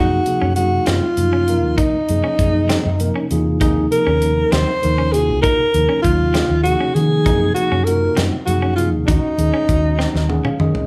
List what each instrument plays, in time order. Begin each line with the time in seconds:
Already playing: fingered electric bass F#2, tine electric piano C3 F3 A#3 D#4 G#4, clean electric guitar D#4, alto saxophone F#4
0.26 tine electric piano C3 F3 A#3 D#4 G#4, closed hi-hat
0.42 fingered electric bass F#2, clean electric guitar C#4
0.56 tine electric piano C3 F#3 A#3 D#4 G#4, alto saxophone F#4, closed hi-hat
0.86 fingered electric bass F#2, clean electric guitar C4, alto saxophone F4, snare, closed hi-hat
1.17 fingered electric bass F#2, tine electric piano C3 F3 A#3 D#4 F4, closed hi-hat
1.33 clean electric guitar C#4
1.48 tine electric piano C3 F3 A#3 D#4 A#4, closed hi-hat
1.63 fingered electric bass D#2
1.78 clean electric guitar D#4, alto saxophone D#4, kick, closed hi-hat
1.94 muted fingered electric bass stroke
2.09 fingered electric bass F#2, tine electric piano C3 F3 A#3 D#4 G#4, closed hi-hat
2.24 clean electric guitar C#4
2.39 fingered electric bass F#2, tine electric piano C3 F3 A#3 D#4 G#4, kick, closed hi-hat
2.69 clean electric guitar C4, snare, closed hi-hat
2.86 fingered electric bass F#2
3.00 tine electric piano C3 F3 A#3 D#4 A#4, closed hi-hat
3.16 clean electric guitar C#4
3.30 fingered electric bass E2, tine electric piano C3 A#3 D#4 F4 G#4, closed hi-hat
3.61 fingered electric bass D#2, tine electric piano C3 F3 A#3 D#4 G#4, clean electric guitar D#4, kick, closed hi-hat
3.91 tine electric piano C3 F3 A#3 D#4 G#4, alto saxophone A#4, closed hi-hat
4.07 fingered electric bass D#2, clean electric guitar C#4
4.21 tine electric piano C3 F3 A#3 D#4 A#4, closed hi-hat
4.52 fingered electric bass D#2, clean electric guitar C4, alto saxophone C5, snare, closed hi-hat
4.82 fingered electric bass D#2, tine electric piano C3 F3 A#3 D#4 A#4, closed hi-hat
4.98 clean electric guitar C#4
5.13 tine electric piano C3 A#3 D#4 F4 F#4, alto saxophone G#4, closed hi-hat
5.29 fingered electric bass C2
5.42 clean electric guitar D#4, alto saxophone A#4, kick, closed hi-hat
5.60 muted fingered electric bass stroke
5.74 fingered electric bass D#2, tine electric piano C3 F3 A#3 D#4 A#4, closed hi-hat
5.89 clean electric guitar C#4
6.02 fingered electric bass D#2, tine electric piano C3 F#3 A#3 D#4 F4, alto saxophone F4, kick, closed hi-hat
6.34 clean electric guitar C4, snare, closed hi-hat
6.50 fingered electric bass D#2
6.63 tine electric piano C3 F3 A#3 D#4 G#4, alto saxophone F#4, closed hi-hat
6.81 clean electric guitar C#4
6.94 tine electric piano C3 F3 A#3 D#4 G#4, fingered electric bass D#3, alto saxophone G#4, closed hi-hat
7.26 fingered electric bass F#2, tine electric piano C3 F3 A#3 D#4 G#4, clean electric guitar D#4, kick, closed hi-hat
7.54 tine electric piano C3 F3 A#3 D#4 G#4, alto saxophone F#4, closed hi-hat
7.72 fingered electric bass F#2, clean electric guitar C#4
7.84 tine electric piano C3 A#3 D#4 F4 F#4, alto saxophone A#4, closed hi-hat
8.17 fingered electric bass F#2, clean electric guitar C4, snare, closed hi-hat
8.46 fingered electric bass F#2, tine electric piano C3 F3 A#3 D#4 G#4, alto saxophone F#4, closed hi-hat
8.62 clean electric guitar C#4
8.76 tine electric piano C3 F3 A#3 D#4 G#4, alto saxophone F4, closed hi-hat
8.94 fingered electric bass D#2
9.06 fingered electric bass D#2, tine electric piano A#2 D#3 G#3 C#4 F#4, alto saxophone D#4, clean electric guitar D#4, kick, closed hi-hat
9.38 fingered electric bass D#2, tine electric piano A#2 D#3 G#3 C#4 G#4, closed hi-hat
9.54 clean electric guitar C#4
9.68 fingered electric bass D#2, tine electric piano A#2 D#3 G#3 C#4 F#4, kick, closed hi-hat
9.99 clean electric guitar C4, snare
10.14 fingered electric bass D#2, snare
10.29 tine electric piano A#2 D#3 G#3 C#4 G#4 F#5, high tom
10.45 clean electric guitar C#4, tine electric piano F5, mid tom
10.60 tine electric piano A#2 D#3 G#3 C#4 G#4 D#5, fingered electric bass D#3, mid tom
10.75 floor tom